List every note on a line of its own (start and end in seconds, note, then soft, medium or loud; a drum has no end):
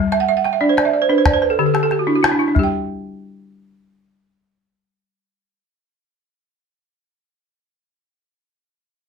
0.00 0.29 G3 medium
0.12 0.27 E5 medium
0.12 calabash click soft
0.20 0.35 F#5 medium
0.29 0.44 E5 medium
0.37 0.52 F#5 medium
0.44 0.60 G5 medium
0.44 calabash click soft
0.53 0.68 E5 medium
0.61 0.94 D4 medium
0.61 0.76 D5 medium
0.69 0.84 C5 medium
0.77 0.92 D5 medium
0.77 calabash click soft
0.85 1.01 E5 medium
0.94 1.09 D5 medium
1.02 1.17 C5 medium
1.09 1.26 D4 medium
1.09 1.25 B4 medium
1.18 1.32 C5 medium
1.26 1.41 D5 medium
1.26 calabash thump medium
1.26 calabash click medium
1.34 1.49 C5 medium
1.42 1.57 B4 medium
1.42 calabash click soft
1.50 1.65 A4 medium
1.59 1.91 D3 medium
1.59 1.73 G4 medium
1.66 1.82 A4 medium
1.74 1.90 G4 medium
1.74 calabash click medium
1.83 1.98 A4 medium
1.91 2.07 G4 medium
1.91 calabash click soft
1.99 2.14 F#4 medium
2.07 2.30 D4 medium
2.07 2.22 E4 medium
2.15 2.31 F#4 medium
2.23 2.38 E4 medium
2.23 calabash click medium
2.32 2.47 D4 medium
2.39 2.55 E4 medium
2.39 calabash click soft
2.48 2.63 D4 medium
2.55 6.66 G3 medium
2.55 calabash thump medium
2.59 6.68 G4 medium
2.63 6.70 G5 medium